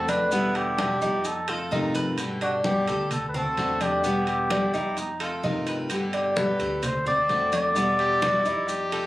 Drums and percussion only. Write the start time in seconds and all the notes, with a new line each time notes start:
0.08 high conga, high timbale, maracas
0.32 high conga, maracas
0.55 high conga, high timbale, maracas
0.78 high conga, high timbale, maracas
1.02 high conga, maracas
1.25 high conga, high timbale, maracas
1.48 high conga, high timbale, maracas
1.71 high conga, maracas
1.95 high conga, high timbale, maracas
2.18 high conga, high timbale, maracas
2.41 high conga, high timbale, maracas
2.64 high conga, maracas
2.88 high conga, high timbale, maracas
3.11 high conga, low conga, high timbale, maracas
3.34 high conga, low conga, maracas
3.57 high conga, high timbale, maracas
3.81 high conga, high timbale, maracas
4.04 high conga, maracas
4.27 high conga, high timbale, maracas
4.50 high conga, high timbale, maracas
4.74 high conga, maracas
4.97 high conga, high timbale, maracas
5.20 high conga, high timbale, maracas
5.44 high conga, maracas
5.67 high timbale, maracas
5.90 high conga, high timbale, maracas
6.13 high conga, high timbale, maracas
6.37 high conga, maracas
6.60 high conga, high timbale, maracas
6.83 high conga, low conga, high timbale, maracas
7.06 high conga, low conga, maracas
7.29 high conga, high timbale, maracas
7.52 high conga, high timbale, maracas
7.76 high conga, maracas
7.99 high conga, high timbale, maracas
8.22 high conga, high timbale, maracas
8.45 maracas
8.69 high conga, high timbale, maracas
8.92 high conga, high timbale, maracas